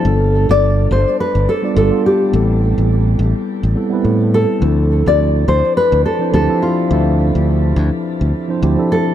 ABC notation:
X:1
M:4/4
L:1/16
Q:"Swing 16ths" 1/4=105
K:Ddor
V:1 name="Nylon-string guitar"
A3 d3 c2 B2 A2 A2 G2- | G8- G2 z4 A2- | A3 d3 c2 B2 A2 A2 F2- | F8- F2 z4 A2 |]
V:2 name="Tine electric piano"
[G,B,DFA]8- [G,B,DFA]2 z [G,B,DFd] [G,B,DFG] [G,B,DFA]3 | [G,B,CEA]8- [G,B,CEA]2 [G,B,CEA] [G,B,CEB]4- [G,B,CEB] | [F,CDEA]8- [F,CDEA]2 z [F,CDEc] [F,CDEG] [F,CDEA]3 | [F,CDAe]8- [F,CDAe]2 z [F,CDEc] [F,CDEG] [F,CDEA]3 |]
V:3 name="Fingered electric bass" clef=bass
G,,,3 G,,,3 G,,, z2 G,,, z2 G,,, z3 | A,,,3 A,,,3 A,,, z2 A,,, z2 A,,3 z | D,,3 D,,3 D,, z2 D,, z2 D,, z3 | D,,3 D,,3 D,, z2 D,, z2 D,, z3 |]